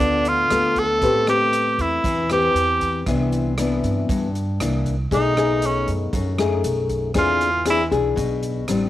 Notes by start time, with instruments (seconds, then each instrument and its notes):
Already playing: nylon-string guitar B3 F4 A4, tenor saxophone D4
0.00 upright bass D2, nylon-string guitar D3
0.25 tenor saxophone F4, closed hi-hat
0.50 upright bass D2, nylon-string guitar B3 F4 A4, cross-stick, closed hi-hat
0.76 tenor saxophone A4, kick, closed hi-hat
1.02 upright bass A2, nylon-string guitar A3 C4 G4 B4, kick, closed hi-hat
1.27 nylon-string guitar C4 G4 B4, tenor saxophone G4, cross-stick, closed hi-hat
1.53 closed hi-hat
1.78 upright bass E2, tenor saxophone E4, kick, closed hi-hat
2.04 upright bass E2, nylon-string guitar E3, kick, closed hi-hat
2.30 nylon-string guitar C4 G4 B4, tenor saxophone G4, cross-stick, closed hi-hat
2.54 upright bass E2, closed hi-hat
2.81 kick, closed hi-hat
3.06 upright bass C2, nylon-string guitar C3 E3 B3 D4, kick, cross-stick, closed hi-hat
3.32 closed hi-hat
3.58 nylon-string guitar E3 B3 D4, cross-stick, closed hi-hat
3.83 upright bass G2, kick, closed hi-hat
4.09 upright bass G2, nylon-string guitar G2, kick, closed hi-hat
4.35 closed hi-hat
4.60 upright bass C2, nylon-string guitar E3 A#3 D4, cross-stick, closed hi-hat
4.86 kick, closed hi-hat
5.11 upright bass B1, nylon-string guitar B2 A3 D#4 G#4, tenor saxophone D#4, kick, closed hi-hat
5.37 nylon-string guitar A3 D#4 G#4, cross-stick, closed hi-hat
5.62 tenor saxophone C#4, closed hi-hat
5.88 upright bass F#2, kick, closed hi-hat
6.13 upright bass F#2, nylon-string guitar F#2, kick, closed hi-hat
6.38 nylon-string guitar A3 D#4 G#4, cross-stick, closed hi-hat
6.64 upright bass B1, closed hi-hat
6.89 kick, closed hi-hat
7.14 upright bass E2, nylon-string guitar E3 C4 D4 G#4, kick, cross-stick, closed hi-hat
7.19 tenor saxophone F4
7.41 closed hi-hat
7.65 nylon-string guitar C4 D4 G#4, cross-stick, closed hi-hat
7.70 tenor saxophone E4
7.91 upright bass B1, nylon-string guitar D4 G#4, kick, closed hi-hat
8.16 upright bass B1, nylon-string guitar B2, kick, closed hi-hat
8.43 closed hi-hat
8.68 upright bass A1, nylon-string guitar G3 C4 D4, cross-stick, closed hi-hat